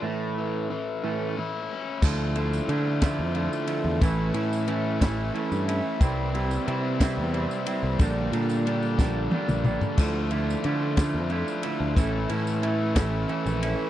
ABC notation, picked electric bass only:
X:1
M:6/8
L:1/16
Q:3/8=60
K:Dm
V:1 name="Picked electric bass" clef=bass
z12 | D,,4 D,3 F,,2 z2 E,, | A,,,2 A,,4 A,,,2 z G,,2 z | C,,4 C,3 E,,2 z2 C,, |
B,,,2 B,,4 B,,,2 z B,,,2 z | D,,4 D,3 F,,2 z2 D,, | A,,,2 A,,4 A,,,2 z B,,,2 z |]